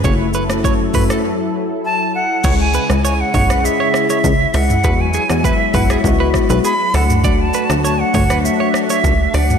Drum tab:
CC |----------------|x---------------|----------------|----------------|
HH |------o---------|------o-------o-|------o-------o-|------o-------o-|
SH |x-xxx-xx--------|x-xxx-xxx-xxx-xx|x-xxx-xxx-xxx-xx|x-xxx-xxx-xxx-xx|
SD |---r---r--------|---r---r--r---r-|---r---r--r---r-|---r---r--r---r-|
T2 |------o---------|------o--------o|------o--------o|------o--------o|
BD |o---o-o---------|o-----o-----o---|o---o-o-o-o-----|o-----o-----o---|